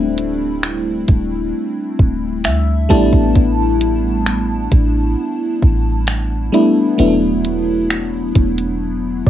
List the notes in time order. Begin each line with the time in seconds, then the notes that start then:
Already playing: D1 G3 A3 C4 D4 E4
0.18 closed hi-hat
0.63 finger snap, closed hi-hat
1.08 D1, kick, closed hi-hat
1.99 D1, kick
2.44 D2 E5, finger snap, closed hi-hat
2.89 A1 G3 A3 B3 D4 E4 A5, kick, closed hi-hat
3.13 A1, kick
3.35 A1, kick, closed hi-hat
3.81 closed hi-hat
4.26 finger snap, closed hi-hat
4.72 A1, kick, closed hi-hat
5.63 A1, kick
6.07 finger snap, closed hi-hat
6.52 G3 A3 B3 D4 E4, closed hi-hat
6.98 E1 F#3 A3 B3 D4 E4, closed hi-hat
7.45 closed hi-hat
7.90 finger snap, closed hi-hat
8.35 E1, kick, closed hi-hat
8.58 closed hi-hat
9.26 E1 D5, kick